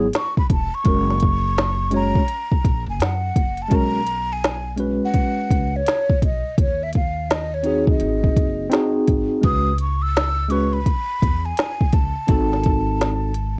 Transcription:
0.14 0.37 C#6 loud
0.14 snare loud
0.14 closed hi-hat loud
0.37 0.50 B5 medium
0.37 kick medium
0.50 0.69 E1 loud
0.50 0.76 A5 loud
0.50 kick medium
0.50 closed hi-hat medium
0.75 1.94 C#6 loud
0.84 2.12 F#1 loud
0.84 1.13 G#3 medium
0.84 1.14 C#4 medium
0.84 1.14 F#4 medium
0.84 1.15 A#4 medium
0.84 kick loud
0.84 closed hi-hat medium
1.10 snare soft
1.20 kick medium
1.20 closed hi-hat medium
1.58 snare loud
1.58 closed hi-hat medium
1.90 2.20 G#3 medium
1.90 2.20 C#4 medium
1.90 2.21 F#4 medium
1.90 2.22 C#5 medium
1.90 closed hi-hat medium
1.95 2.85 A#5 loud
2.15 kick medium
2.28 closed hi-hat medium
2.51 kick medium
2.64 2.84 A#1 loud
2.64 kick loud
2.64 closed hi-hat medium
2.86 2.98 F#1 medium
2.86 3.04 G#5 medium
3.00 3.30 F#2 loud
3.00 3.63 F#5 medium
3.00 snare loud
3.00 closed hi-hat loud
3.36 3.66 F#1 medium
3.36 kick medium
3.36 closed hi-hat medium
3.57 closed hi-hat soft
3.62 3.77 A5 medium
3.68 4.98 B1 loud
3.68 3.98 G#3 medium
3.68 3.99 C#4 medium
3.68 3.99 F#4 medium
3.68 4.00 A#4 medium
3.68 kick loud
3.68 closed hi-hat medium
3.75 4.34 A#5 loud
4.06 closed hi-hat medium
4.33 4.74 G#5 medium
4.44 snare loud
4.44 closed hi-hat medium
4.76 5.80 G#3 medium
4.76 5.80 C#4 medium
4.76 5.81 F#4 medium
4.76 5.81 B4 medium
4.76 closed hi-hat medium
5.05 5.78 F#5 medium
5.14 kick medium
5.14 closed hi-hat medium
5.50 5.80 C#2 medium
5.50 kick medium
5.50 closed hi-hat medium
5.76 6.24 C#5 loud
5.87 snare loud
5.87 closed hi-hat loud
6.10 kick loud
6.22 6.41 B1 loud
6.22 6.57 D#5 medium
6.22 kick medium
6.22 closed hi-hat medium
6.58 8.02 D#2 medium
6.58 6.85 C#5 medium
6.58 kick loud
6.58 closed hi-hat medium
6.83 6.95 E5 medium
6.93 7.32 F5 medium
6.93 kick medium
6.93 closed hi-hat medium
7.30 7.56 D#5 medium
7.30 snare loud
7.30 closed hi-hat medium
7.54 7.89 C#5 medium
7.63 8.66 C4 medium
7.63 8.67 D#4 medium
7.63 8.67 F#4 medium
7.63 8.68 G#4 medium
7.63 closed hi-hat medium
7.87 8.92 D#5 medium
7.87 kick loud
8.00 8.30 G#1 medium
8.00 closed hi-hat medium
8.24 kick medium
8.37 8.66 F#1 medium
8.37 kick loud
8.37 closed hi-hat medium
8.70 9.42 C4 medium
8.70 9.43 D#4 medium
8.70 9.42 F#4 medium
8.70 9.44 G#4 medium
8.70 snare loud
8.70 closed hi-hat loud
9.08 9.27 G#1 medium
9.08 kick medium
9.08 closed hi-hat medium
9.41 10.82 C#2 loud
9.41 9.70 G#3 medium
9.41 9.71 C#4 medium
9.41 9.71 F#4 medium
9.41 9.72 B4 medium
9.41 9.78 D#6 loud
9.41 kick loud
9.41 closed hi-hat medium
9.78 10.04 C#6 loud
9.78 closed hi-hat medium
10.02 10.52 E6 loud
10.17 snare loud
10.17 closed hi-hat medium
10.49 10.78 G#3 medium
10.49 10.78 C#4 medium
10.49 10.79 F#4 medium
10.49 10.79 B4 medium
10.49 10.75 C#6 loud
10.49 closed hi-hat medium
10.74 11.47 B5 loud
10.86 kick medium
10.86 closed hi-hat medium
11.22 11.52 E2 loud
11.22 kick loud
11.22 closed hi-hat medium
11.46 11.96 G#5 loud
11.57 snare loud
11.57 closed hi-hat loud
11.81 kick medium
11.93 12.12 C#2 loud
11.93 13.59 A5 medium
11.93 kick loud
11.93 closed hi-hat medium
12.27 13.55 G#1 loud
12.27 13.30 C4 medium
12.27 13.31 D#4 medium
12.27 13.31 F#4 medium
12.27 13.32 A4 medium
12.27 kick loud
12.27 closed hi-hat medium
12.53 snare soft
12.64 kick medium
12.64 closed hi-hat medium
13.01 snare loud
13.01 closed hi-hat medium
13.34 closed hi-hat medium

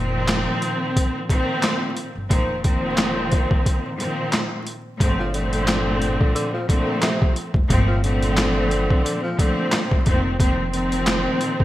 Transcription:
0.00 0.45 F1 loud
0.00 1.19 A#2 loud
0.00 1.20 D#3 medium
0.00 1.20 F3 loud
0.00 1.20 C4 loud
0.28 snare loud
0.28 clap loud
0.28 closed hi-hat medium
0.62 closed hi-hat medium
0.96 kick medium
0.96 closed hi-hat loud
1.29 2.08 A#2 loud
1.29 2.08 D#3 medium
1.29 2.08 F3 medium
1.29 2.09 C4 loud
1.29 kick medium
1.29 closed hi-hat medium
1.62 snare loud
1.62 clap loud
1.62 closed hi-hat medium
1.97 closed hi-hat medium
2.15 2.30 G1 medium
2.29 3.46 F1 loud
2.29 2.61 A#2 medium
2.29 2.62 D#3 medium
2.29 2.62 F3 medium
2.29 2.62 C4 loud
2.29 kick loud
2.29 closed hi-hat medium
2.64 3.90 A#2 loud
2.64 3.90 D#3 loud
2.64 3.90 F3 loud
2.64 3.91 C4 loud
2.64 kick loud
2.64 closed hi-hat medium
2.97 snare loud
2.97 clap loud
2.97 closed hi-hat medium
3.32 kick loud
3.32 closed hi-hat medium
3.51 kick loud
3.66 kick medium
3.66 closed hi-hat medium
3.98 4.61 A#2 medium
3.98 4.62 D#3 medium
3.98 4.62 F3 medium
3.98 4.62 C4 loud
3.98 closed hi-hat medium
4.32 snare loud
4.32 clap loud
4.32 closed hi-hat medium
4.67 closed hi-hat medium
5.00 6.16 G1 loud
5.00 5.31 A#2 medium
5.00 5.32 F3 medium
5.00 5.32 A3 medium
5.00 5.32 C4 loud
5.00 kick loud
5.00 closed hi-hat medium
5.20 5.33 F3 medium
5.34 6.59 A#2 loud
5.34 6.31 D3 medium
5.34 6.59 F3 loud
5.34 6.59 A3 loud
5.34 6.60 C4 loud
5.34 closed hi-hat medium
5.53 closed hi-hat medium
5.67 snare loud
5.67 clap loud
5.67 closed hi-hat loud
6.02 closed hi-hat medium
6.21 kick loud
6.35 6.52 D3 loud
6.35 closed hi-hat loud
6.54 6.68 F3 medium
6.69 7.47 A#2 loud
6.69 6.99 D3 medium
6.69 7.48 F3 loud
6.69 7.48 A3 loud
6.69 7.48 C4 loud
6.69 kick medium
6.69 closed hi-hat medium
7.02 7.33 C3 medium
7.02 snare loud
7.02 clap loud
7.02 closed hi-hat medium
7.22 kick loud
7.36 closed hi-hat medium
7.54 7.66 F1 medium
7.54 kick loud
7.69 8.86 G1 loud
7.69 8.01 A#2 loud
7.69 8.01 F3 loud
7.69 8.01 A3 medium
7.69 8.02 C4 loud
7.69 kick loud
7.69 closed hi-hat medium
7.88 8.02 F3 medium
8.04 9.29 A#2 loud
8.04 9.01 D3 medium
8.04 9.29 F3 loud
8.04 9.29 A3 loud
8.04 9.30 C4 loud
8.04 closed hi-hat medium
8.23 closed hi-hat medium
8.37 snare loud
8.37 clap loud
8.37 closed hi-hat medium
8.71 closed hi-hat medium
8.90 kick loud
9.04 9.21 D3 loud
9.04 closed hi-hat loud
9.23 9.37 F3 medium
9.38 10.01 A#2 loud
9.38 9.88 D3 medium
9.38 10.01 F3 loud
9.38 10.02 A3 medium
9.38 10.02 C4 loud
9.38 kick medium
9.38 closed hi-hat medium
9.72 snare loud
9.72 clap loud
9.72 closed hi-hat medium
9.91 kick loud
10.06 11.24 F1 loud
10.06 10.37 A#2 loud
10.06 10.38 D#3 medium
10.06 10.38 F3 medium
10.06 10.38 C4 loud
10.06 kick loud
10.06 closed hi-hat medium
10.38 10.70 A#2 loud
10.38 10.71 D#3 medium
10.38 10.71 F3 medium
10.38 10.71 C4 loud
10.38 kick loud
10.38 closed hi-hat medium
10.72 11.64 A#2 loud
10.72 11.64 D#3 medium
10.72 11.64 F3 loud
10.72 11.64 C4 loud
10.72 closed hi-hat medium
10.92 closed hi-hat medium
11.07 snare loud
11.07 clap loud
11.07 closed hi-hat medium
11.41 closed hi-hat medium
11.60 kick loud

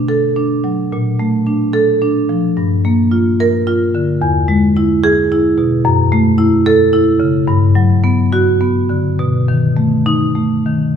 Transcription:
0.00 0.88 B2 medium
0.00 0.26 D4 medium
0.08 0.54 A4 medium
0.36 0.81 D4 medium
0.64 0.92 F#3 medium
0.92 2.54 A#2 medium
1.19 1.63 A3 medium
1.47 1.91 D4 medium
1.73 2.19 A4 medium
2.02 2.47 D4 medium
2.29 2.58 F3 medium
2.57 4.18 G2 medium
2.85 3.29 A#3 medium
3.11 3.56 F4 medium
3.40 3.84 A#4 loud
3.67 4.11 F4 medium
3.95 4.22 D3 medium
4.22 5.81 E2 loud
4.48 4.93 G#3 medium
4.77 5.21 E4 medium
5.04 5.47 G#4 loud
5.32 5.75 E4 medium
5.58 5.85 B2 medium
5.85 7.44 F#2 loud
6.12 6.55 A3 medium
6.38 6.82 E4 medium
6.66 7.10 A4 loud
6.93 7.37 E4 medium
7.20 7.48 C#3 medium
7.48 9.14 G2 loud
7.75 8.21 F#3 medium
8.04 8.49 B3 medium
8.32 8.78 F#4 loud
8.61 9.07 B3 medium
8.89 9.19 D3 medium
9.19 10.90 B2 medium
9.48 9.94 D#3 medium
9.77 10.24 A3 medium
10.06 10.53 D#4 medium
10.35 10.83 A3 medium
10.66 10.95 D#3 medium

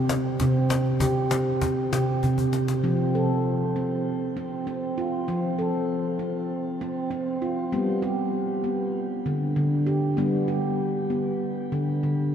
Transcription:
0.00 0.37 C3 medium
0.00 0.11 G4 medium
0.09 cajon slap medium
0.40 1.59 C3 loud
0.40 1.02 C4 medium
0.40 cajon bass medium
0.40 cajon slap soft
0.70 cajon slap medium
0.86 cajon slap soft
1.00 1.32 G4 medium
1.00 cajon bass medium
1.17 cajon slap soft
1.31 1.93 C4 medium
1.31 cajon slap medium
1.62 cajon bass medium
1.62 cajon slap soft
1.93 2.21 C3 medium
1.93 2.53 G4 medium
1.93 cajon slap medium
2.23 2.81 C3 medium
2.23 cajon bass soft
2.38 cajon bass soft
2.53 cajon slap soft
2.68 cajon slap soft
2.84 4.02 F3 medium
2.84 3.14 C4 medium
3.15 3.76 A4 medium
3.76 4.35 C4 medium
4.37 4.65 C4 medium
4.67 5.25 C4 medium
4.98 5.28 F4 medium
5.28 6.47 F3 medium
5.28 5.59 C4 medium
5.59 6.20 A4 medium
6.19 6.80 C4 medium
6.81 7.09 C4 medium
7.11 7.69 C4 medium
7.42 7.73 F4 medium
7.72 8.91 G3 medium
7.72 8.03 B3 medium
8.02 8.64 G4 medium
8.64 9.26 B3 medium
9.26 9.55 D3 medium
9.56 10.14 D3 medium
9.87 10.18 G4 medium
10.17 11.36 G3 medium
10.17 10.48 B3 medium
10.48 11.09 G4 medium
11.10 11.71 B3 medium
11.72 12.00 D3 medium
12.03 12.35 D3 medium

